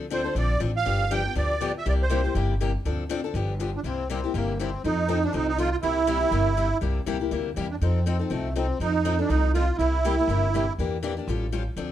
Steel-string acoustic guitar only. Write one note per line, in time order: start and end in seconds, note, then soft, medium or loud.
0.10 0.21 D3 medium
0.10 0.21 F3 medium
0.10 0.21 C4 medium
0.10 0.21 D4 loud
0.10 0.21 A4 medium
0.24 0.36 C4 soft
0.24 0.36 D4 soft
0.24 0.35 A4 soft
0.36 0.54 D3 medium
0.36 0.54 F3 medium
0.36 0.54 C4 medium
0.36 0.54 D4 medium
0.36 0.54 A4 medium
0.60 0.70 D3 medium
0.60 0.70 F3 medium
0.60 0.71 C4 medium
0.60 0.71 D4 medium
0.60 0.71 A4 medium
0.85 1.03 D3 medium
0.85 1.04 F3 medium
0.85 1.04 B3 medium
0.85 1.04 D4 medium
0.85 1.04 G4 medium
1.11 1.21 D3 medium
1.11 1.21 F3 loud
1.11 1.21 B3 medium
1.11 1.21 D4 medium
1.11 1.21 G4 loud
1.25 1.35 B3 soft
1.25 1.35 D4 soft
1.35 1.53 D3 medium
1.35 1.53 F3 medium
1.35 1.53 B3 medium
1.35 1.54 D4 medium
1.35 1.54 G4 medium
1.61 1.70 D3 medium
1.61 1.71 F3 medium
1.61 1.71 B3 medium
1.61 1.71 D4 medium
1.61 1.71 G4 medium
1.86 2.03 C3 medium
1.86 2.03 G3 medium
1.86 2.03 A#3 medium
1.86 2.03 E4 medium
1.86 2.03 G4 medium
2.10 2.20 C3 medium
2.10 2.20 G3 loud
2.10 2.20 A#3 medium
2.10 2.20 E4 loud
2.10 2.20 G4 medium
2.24 2.34 A#3 soft
2.24 2.35 E4 soft
2.24 2.35 G4 soft
2.35 2.53 C3 medium
2.35 2.53 G3 medium
2.35 2.53 A#3 medium
2.35 2.53 E4 medium
2.35 2.53 G4 medium
2.61 2.70 C3 medium
2.61 2.70 G3 medium
2.61 2.70 A#3 medium
2.61 2.71 E4 medium
2.61 2.71 G4 medium
2.85 3.03 D3 medium
2.85 3.03 F3 medium
2.85 3.03 C4 medium
2.85 3.03 D4 medium
2.85 3.03 A4 medium
3.09 3.19 D3 medium
3.09 3.20 F3 medium
3.09 3.20 C4 medium
3.09 3.20 D4 loud
3.09 3.20 A4 loud
3.24 3.35 C4 soft
3.24 3.35 D4 soft
3.24 3.34 A4 medium
3.35 3.52 D3 medium
3.35 3.52 F3 medium
3.35 3.52 B3 medium
3.35 3.53 D4 medium
3.35 3.53 G4 medium
3.60 3.69 D3 medium
3.60 3.69 F3 medium
3.60 3.70 B3 medium
3.60 3.70 D4 medium
3.60 3.70 G4 medium
3.84 4.02 C3 medium
3.84 4.02 G3 medium
3.84 4.02 A#3 medium
3.84 4.03 E4 medium
3.84 4.03 G4 medium
4.10 4.19 C3 medium
4.10 4.19 G3 medium
4.10 4.19 A#3 medium
4.10 4.20 E4 medium
4.10 4.20 G4 loud
4.24 4.34 A#3 soft
4.24 4.34 E4 soft
4.24 4.34 G4 medium
4.34 4.52 C3 medium
4.34 4.52 G3 medium
4.34 4.52 A#3 medium
4.34 4.52 E4 medium
4.34 4.52 G4 medium
4.59 4.69 C3 medium
4.59 4.69 G3 medium
4.59 4.69 A#3 medium
4.59 4.69 E4 medium
4.59 4.70 G4 medium
4.84 5.02 F3 medium
4.84 5.02 C4 medium
4.84 5.02 D#4 medium
4.84 5.02 A4 medium
5.08 5.18 F3 medium
5.08 5.18 C4 medium
5.08 5.18 D#4 medium
5.08 5.19 A4 loud
5.23 5.33 C4 soft
5.23 5.33 D#4 soft
5.33 5.51 F3 medium
5.33 5.51 C4 medium
5.33 5.51 D#4 medium
5.33 5.51 A4 medium
5.58 5.68 F3 medium
5.58 5.68 C4 medium
5.58 5.68 D#4 medium
5.58 5.68 A4 medium
5.83 6.00 C3 medium
5.83 6.00 G3 medium
5.83 6.01 A#3 medium
5.83 6.01 E4 medium
5.83 6.01 G4 medium
6.07 6.17 C3 loud
6.07 6.17 G3 loud
6.07 6.17 A#3 loud
6.07 6.17 E4 loud
6.07 6.18 G4 loud
6.20 6.31 A#3 soft
6.20 6.31 E4 soft
6.20 6.31 G4 medium
6.32 6.50 C3 medium
6.32 6.50 G3 medium
6.32 6.50 A#3 medium
6.32 6.50 E4 medium
6.32 6.50 G4 medium
6.57 6.67 C3 medium
6.57 6.67 G3 medium
6.57 6.67 A#3 medium
6.57 6.67 E4 medium
6.57 6.68 G4 medium
6.81 6.99 C3 medium
6.81 6.99 G3 medium
6.81 6.99 A#3 medium
6.81 7.00 E4 medium
6.81 7.00 G4 medium
7.06 7.16 C3 medium
7.06 7.16 G3 medium
7.06 7.16 A#3 medium
7.06 7.17 E4 loud
7.06 7.17 G4 loud
7.20 7.31 A#3 soft
7.20 7.31 E4 soft
7.20 7.31 G4 soft
7.31 7.49 C3 medium
7.31 7.49 G3 medium
7.31 7.49 A#3 medium
7.31 7.49 E4 medium
7.31 7.49 G4 medium
7.56 7.66 C3 medium
7.56 7.66 G3 medium
7.56 7.66 A#3 medium
7.56 7.66 E4 medium
7.56 7.66 G4 medium
7.82 7.99 F3 medium
7.82 7.99 C4 medium
7.82 7.99 D#4 medium
7.82 7.99 A4 medium
8.06 8.15 F3 medium
8.06 8.16 C4 loud
8.06 8.16 D#4 medium
8.06 8.16 A4 loud
8.19 8.30 C4 soft
8.19 8.29 D#4 soft
8.19 8.30 A4 soft
8.30 8.48 F3 medium
8.30 8.48 C4 medium
8.30 8.48 D#4 medium
8.30 8.48 A4 medium
8.56 8.65 F3 medium
8.56 8.65 C4 medium
8.56 8.65 D#4 medium
8.56 8.65 A4 medium
8.80 8.98 F3 medium
8.80 8.98 C4 medium
8.80 8.98 D#4 medium
8.80 8.98 A4 medium
9.05 9.14 F3 medium
9.05 9.14 C4 medium
9.05 9.15 D#4 loud
9.05 9.15 A4 loud
9.19 9.29 C4 soft
9.19 9.29 D#4 soft
9.19 9.29 A4 medium
9.30 9.47 F3 medium
9.30 9.47 C4 medium
9.30 9.47 D#4 medium
9.30 9.48 A4 medium
9.55 9.64 F3 medium
9.55 9.64 C4 medium
9.55 9.65 D#4 medium
9.55 9.65 A4 medium
9.79 9.97 C3 medium
9.79 9.97 G3 medium
9.79 9.97 A#3 medium
9.79 9.97 E4 medium
9.79 9.97 G4 medium
10.04 10.14 C3 medium
10.04 10.14 G3 medium
10.04 10.14 A#3 loud
10.04 10.14 E4 loud
10.04 10.14 G4 loud
10.19 10.28 A#3 soft
10.19 10.29 E4 soft
10.29 10.46 C3 medium
10.29 10.47 G3 medium
10.29 10.47 A#3 medium
10.29 10.47 E4 medium
10.29 10.47 G4 medium
10.54 10.63 C3 medium
10.54 10.64 G3 medium
10.54 10.64 A#3 medium
10.54 10.64 E4 medium
10.54 10.64 G4 medium
10.79 10.96 E3 medium
10.79 10.96 A#3 medium
10.79 10.96 D4 medium
10.79 10.97 G4 medium
11.03 11.12 E3 medium
11.03 11.13 A#3 medium
11.03 11.13 D4 medium
11.03 11.13 G4 loud
11.18 11.28 A#3 soft
11.18 11.28 D4 soft
11.28 11.45 F3 medium
11.28 11.46 G3 medium
11.28 11.46 C#4 medium
11.28 11.46 F4 medium
11.28 11.46 A4 medium
11.52 11.62 F3 medium
11.52 11.62 G3 medium
11.52 11.62 C#4 medium
11.52 11.62 F4 medium
11.52 11.63 A4 medium
11.77 11.92 D3 medium
11.77 11.92 F3 medium
11.77 11.92 C4 medium
11.77 11.92 D4 medium
11.77 11.92 A4 medium